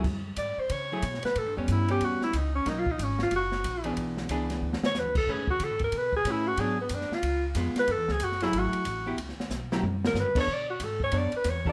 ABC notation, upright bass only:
X:1
M:4/4
L:1/8
Q:"Swing" 1/4=184
K:F#m
V:1 name="Upright bass" clef=bass
F,,2 G,, z C,2 B,, z | (3A,, =G,, E,, G,,2 E,, z C,,2 | B,,,2 G,,,2 F,,,2 ^A,,,2 | B,,,2 C,,2 D,, z (3E,, D,, B,,, |
(3A,, G,, E,, (3C, A,, G,, B,,2 A,,2 | G,,2 F,, z C,,2 ^E,, z | (3F,, E,, C,, F,,,2 G,,, z A,,,2 | C,, z B,,,2 F,,2 (3=G,, F,, E,, |
B,,2 G,,2 F,, z E,,2 |]